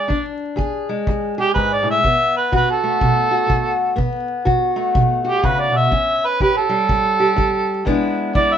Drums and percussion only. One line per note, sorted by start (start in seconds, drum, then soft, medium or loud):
0.10 kick medium
0.59 kick medium
1.07 kick medium
1.56 kick medium
2.04 kick medium
2.53 kick medium
3.01 kick medium
3.50 kick medium
3.98 kick medium
4.47 kick medium
4.95 kick medium
5.44 kick medium
5.92 kick medium
6.40 kick medium
6.89 kick medium
7.38 kick medium
7.87 kick medium
8.35 kick medium